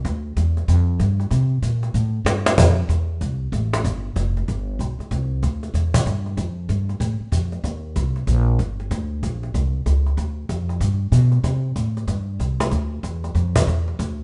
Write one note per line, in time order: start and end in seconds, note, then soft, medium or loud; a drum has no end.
0.05 0.35 D2 loud
0.05 cajon bass soft
0.05 cajon slap soft
0.37 0.67 E2 medium
0.37 cajon bass soft
0.37 cajon slap soft
0.57 cajon slap soft
0.68 0.99 F2 medium
0.68 cajon bass soft
0.68 cajon slap soft
1.00 1.30 G2 medium
1.00 cajon bass soft
1.00 cajon slap soft
1.20 cajon slap soft
1.31 1.62 C3 medium
1.31 cajon bass soft
1.31 cajon slap soft
1.62 1.93 A#2 medium
1.62 cajon bass soft
1.62 cajon slap soft
1.83 cajon slap soft
1.94 2.24 A2 medium
1.94 cajon bass soft
2.25 2.56 G2 medium
2.25 cajon slap medium
2.46 cajon slap medium
2.58 2.88 F2 medium
2.58 cajon bass medium
2.89 3.20 E2 medium
2.89 cajon bass soft
2.89 cajon slap soft
3.21 3.52 C2 medium
3.21 cajon bass soft
3.21 cajon slap soft
3.52 3.83 A1 medium
3.52 cajon bass soft
3.52 cajon slap soft
3.73 cajon slap soft
3.85 4.15 G1 medium
3.85 cajon bass soft
3.85 cajon slap soft
4.16 4.47 F1 medium
4.16 cajon bass soft
4.16 cajon slap soft
4.37 cajon slap soft
4.48 4.79 G1 medium
4.48 cajon bass soft
4.48 cajon slap soft
4.79 4.98 B1 medium
4.79 cajon bass soft
4.79 cajon slap soft
4.99 muted upright bass stroke soft
4.99 cajon slap soft
5.11 5.42 C2 loud
5.11 cajon bass soft
5.11 cajon slap soft
5.43 5.73 D2 medium
5.43 cajon bass soft
5.43 cajon slap soft
5.63 cajon slap soft
5.74 6.05 E2 medium
5.74 cajon bass soft
5.74 cajon slap soft
5.94 cajon bass medium
6.06 6.37 G2 medium
6.06 cajon bass soft
6.06 cajon slap soft
6.26 cajon slap soft
6.37 6.68 F2 medium
6.37 cajon bass soft
6.37 cajon slap soft
6.69 6.99 G2 medium
6.69 cajon bass soft
6.69 cajon slap soft
6.89 cajon slap soft
7.00 7.19 A2 medium
7.00 cajon bass soft
7.00 cajon slap soft
7.20 muted upright bass stroke soft
7.32 7.63 F2 medium
7.32 cajon bass soft
7.32 cajon slap soft
7.52 cajon slap soft
7.64 7.95 D#2 medium
7.64 cajon bass soft
7.64 cajon slap soft
7.96 8.27 C2 medium
7.96 cajon bass soft
7.96 cajon slap soft
8.16 cajon slap soft
8.27 8.58 A#1 medium
8.27 cajon bass soft
8.27 cajon slap soft
8.59 8.90 G1 medium
8.59 cajon bass soft
8.59 cajon slap soft
8.80 cajon slap soft
8.91 9.22 D2 medium
8.91 cajon bass soft
8.91 cajon slap soft
9.23 9.54 A#1 medium
9.23 cajon bass soft
9.23 cajon slap soft
9.43 cajon slap soft
9.54 9.85 C2 medium
9.54 cajon bass soft
9.54 cajon slap soft
9.86 10.17 C#2 medium
9.86 cajon bass soft
9.86 cajon slap soft
10.06 cajon slap soft
10.17 10.48 D2 medium
10.17 cajon bass soft
10.17 cajon slap soft
10.49 10.80 F2 medium
10.49 cajon bass soft
10.49 cajon slap soft
10.69 cajon slap soft
10.81 11.11 G2 medium
10.81 cajon bass soft
10.81 cajon slap soft
11.12 11.43 B2 medium
11.12 cajon bass soft
11.12 cajon slap soft
11.32 cajon slap soft
11.44 11.75 C3 medium
11.44 cajon bass soft
11.44 cajon slap soft
11.76 12.07 A2 medium
11.76 cajon bass soft
11.76 cajon slap soft
11.97 cajon slap soft
12.08 12.39 G2 medium
12.08 cajon bass soft
12.08 cajon slap soft
12.40 12.71 C2 medium
12.40 cajon bass soft
12.40 cajon slap soft
12.60 cajon slap soft
12.71 13.02 D2 medium
12.71 cajon bass soft
12.71 cajon slap soft
13.03 13.34 E2 medium
13.03 cajon bass soft
13.03 cajon slap soft
13.24 cajon slap soft
13.35 13.66 F2 medium
13.35 cajon bass soft
13.35 cajon slap soft
13.56 cajon bass medium
13.67 13.98 E2 medium
13.67 cajon bass soft
13.67 cajon slap soft
13.88 cajon slap soft
13.99 14.23 D2 loud
13.99 cajon bass soft
13.99 cajon slap soft